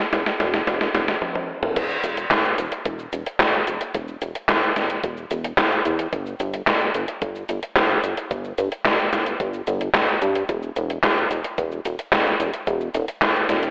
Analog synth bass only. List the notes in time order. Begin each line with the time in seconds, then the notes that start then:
0.13 E1
0.40 E1
0.67 E1
0.94 E1
1.76 E1
2.04 E1
2.31 E1
2.58 E1
2.86 E1
3.13 E1
3.40 E1
3.67 E1
3.95 E1
4.22 E1
4.49 E1
4.76 E1
5.04 E1
5.31 E1
5.58 E1
5.85 E2
6.13 G1
6.40 G1
6.67 G1
6.95 G1
7.22 G1
7.49 G1
7.76 G1
8.04 G1
8.31 G1
8.58 G1
8.85 G1
9.13 G1
9.40 G1
9.67 G1
9.95 G1
10.22 G2
10.49 E1
10.76 E1
11.04 E1
11.31 E1
11.58 E1
11.85 E1
12.13 E1
12.40 E1
12.67 E1
12.95 E1
13.22 E1
13.49 E1